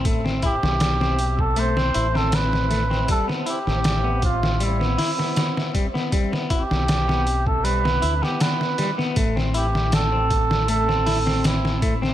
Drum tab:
HH |x-x-x-x-x-x-x-x-|x-x-x-x-x-o-x-x-|x-x-x-x-x-x-x-x-|x-x-x-x-x-o-x-x-|
SD |-o-ooo---o-ooooo|-o-oo--o-ooooo-o|-o-ooo---o-ooooo|-o-oo--o-ooooo-o|
BD |o-o----o--------|o-----o-------o-|o-o----o--------|o-----o-------o-|